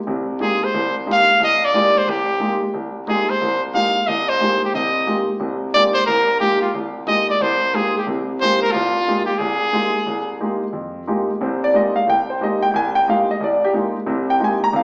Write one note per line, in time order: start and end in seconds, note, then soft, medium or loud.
0.07 0.36 C2 medium
0.07 0.36 C3 medium
0.40 0.63 G#3 soft
0.40 0.63 A#3 soft
0.40 0.63 D#4 soft
0.40 0.63 F4 soft
0.40 0.63 G4 medium
0.40 0.66 G#4 medium
0.64 0.96 C5 medium
0.74 1.03 C2 medium
1.06 1.29 G#3 soft
1.06 1.30 A#3 soft
1.06 1.29 D#4 soft
1.06 1.30 F4 soft
1.06 1.30 G4 medium
1.12 1.41 F5 medium
1.40 1.69 C2 medium
1.40 1.66 D#5 medium
1.65 2.00 D5 medium
1.74 1.96 G#3 medium
1.74 1.97 A#3 soft
1.74 1.96 D#4 soft
1.74 1.97 F4 soft
1.74 1.97 G4 medium
1.98 2.11 C5 medium
2.07 2.36 C2 medium
2.07 2.63 G4 medium
2.40 2.63 G#3 soft
2.40 2.63 A#3 soft
2.40 2.63 D#4 soft
2.40 2.63 F4 soft
2.40 2.63 G4 soft
2.74 3.03 C2 medium
3.07 3.30 G#3 soft
3.07 3.30 A#3 soft
3.07 3.30 D#4 soft
3.07 3.30 F4 soft
3.07 3.30 G4 medium
3.07 3.31 G#4 medium
3.30 3.62 C5 medium
3.42 3.70 C2 medium
3.74 3.96 G#3 soft
3.74 3.96 A#3 soft
3.74 3.97 D#4 soft
3.74 3.97 F4 soft
3.74 3.97 G4 soft
3.74 4.09 F5 medium
4.08 4.36 C2 medium
4.08 4.31 D#5 medium
4.29 4.62 C5 medium
4.40 4.63 G#3 soft
4.40 4.63 A#3 soft
4.40 4.63 D#4 soft
4.40 4.63 F4 soft
4.40 4.63 G4 medium
4.65 4.75 G4 medium
4.74 5.03 C2 medium
4.74 5.03 C3 medium
4.74 5.25 D#5 medium
5.06 5.29 G#3 soft
5.06 5.30 A#3 soft
5.06 5.29 D#4 soft
5.06 5.30 F4 soft
5.06 5.30 G4 medium
5.40 5.69 C2 medium
5.40 5.69 C3 medium
5.74 5.97 G#3 soft
5.74 5.97 A#3 soft
5.74 5.97 D#4 soft
5.74 5.97 F4 soft
5.74 5.97 G4 soft
5.74 5.84 D5 loud
5.94 6.05 C5 medium
6.06 6.36 C2 medium
6.06 6.38 A#4 medium
6.40 6.63 G#3 soft
6.40 6.63 A#3 soft
6.40 6.63 D#4 soft
6.40 6.63 F4 soft
6.40 6.60 G4 medium
6.40 6.63 G4 medium
6.61 6.73 F4 medium
6.74 7.03 C2 medium
7.07 7.29 G#3 medium
7.07 7.29 A#3 soft
7.07 7.29 D#4 soft
7.07 7.30 F4 soft
7.07 7.30 G4 medium
7.07 7.27 D#5 medium
7.30 7.44 D5 medium
7.41 7.69 C2 medium
7.41 7.77 C5 medium
7.74 7.96 G#3 soft
7.74 7.96 A#3 soft
7.74 7.96 D#4 soft
7.74 7.97 F4 soft
7.74 7.97 G4 medium
7.74 7.96 G#4 medium
7.98 8.08 G4 medium
8.07 8.36 C2 medium
8.07 8.36 C3 medium
8.41 8.64 G#3 soft
8.41 8.64 A#3 soft
8.41 8.64 D#4 soft
8.41 8.64 F4 soft
8.41 8.64 G4 medium
8.41 8.60 C5 loud
8.62 8.73 A#4 medium
8.72 9.03 C2 medium
8.72 9.25 F4 medium
9.08 9.30 G#3 soft
9.08 9.30 A#3 soft
9.08 9.30 D#4 soft
9.08 9.30 F4 soft
9.08 9.30 G4 medium
9.25 9.40 G4 medium
9.38 9.69 C2 medium
9.38 10.39 G#4 medium
9.73 9.95 G#3 soft
9.73 9.96 A#3 soft
9.73 9.96 D#4 soft
9.73 9.96 F4 soft
9.73 9.96 G4 soft
10.07 10.35 C2 medium
10.40 10.63 G#3 soft
10.40 10.63 A#3 soft
10.40 10.63 D#4 soft
10.40 10.63 F4 soft
10.40 10.63 G4 soft
10.73 11.02 F2 medium
11.07 11.29 G#3 medium
11.07 11.30 A#3 soft
11.07 11.30 D#4 soft
11.07 11.30 F4 soft
11.07 11.30 G4 medium
11.41 11.69 C2 medium
11.41 11.69 C3 medium
11.41 11.62 C5 medium
11.64 11.74 D5 medium
11.74 11.96 G#3 soft
11.74 11.96 A#3 soft
11.74 11.96 D#4 soft
11.74 11.96 F4 soft
11.74 11.96 G4 medium
11.74 11.95 D#5 medium
11.96 12.07 F5 medium
12.07 12.35 C2 medium
12.07 12.29 G5 medium
12.30 12.41 C5 medium
12.41 12.63 G#3 soft
12.41 12.63 A#3 soft
12.41 12.63 D#4 soft
12.41 12.63 F4 soft
12.41 12.63 G4 medium
12.41 12.62 D#5 medium
12.62 12.70 G5 medium
12.71 13.02 C2 medium
12.71 12.74 G5 medium
12.76 12.95 G#5 medium
12.95 13.07 G5 medium
13.08 13.29 G#3 medium
13.08 13.30 A#3 soft
13.08 13.30 D#4 soft
13.08 13.30 F4 soft
13.08 13.30 G4 medium
13.08 13.29 F5 medium
13.31 13.41 D#5 medium
13.41 13.69 C2 medium
13.41 13.62 D5 medium
13.64 13.71 G4 medium
13.74 13.96 G#3 medium
13.74 13.96 A#3 soft
13.74 13.96 D#4 soft
13.74 13.96 F4 soft
13.74 13.96 G4 medium
14.07 14.35 C2 medium
14.07 14.35 C3 medium
14.30 14.41 G5 medium
14.39 14.62 G#3 soft
14.39 14.62 A#3 soft
14.39 14.62 D#4 soft
14.39 14.62 F4 soft
14.39 14.62 G4 medium
14.44 14.62 G#5 medium
14.64 14.74 A#5 loud
14.73 14.83 C2 medium
14.73 14.83 C3 medium
14.73 14.83 F5 medium